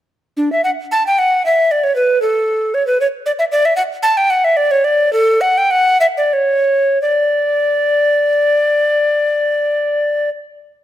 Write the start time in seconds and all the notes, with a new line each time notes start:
0.37 D4
0.52 E5
0.64 F#5
0.92 A5
1.07 G5
1.19 F#5
1.46 E5
1.71 D5
1.84 C#5
1.96 B4
2.22 A4
2.74 C#5
2.87 B4
3.01 C#5
3.26 D5
3.39 E5
3.52 D5
3.65 E5
3.76 F#5
4.03 A5
4.17 G5
4.30 F#5
4.44 E5
4.57 D5
4.71 C#5
4.84 D5
5.13 A4
5.41 F#5
5.58 G5
5.71 F#5
6.00 E5
6.17 D5
6.33 C#5
7.02 D5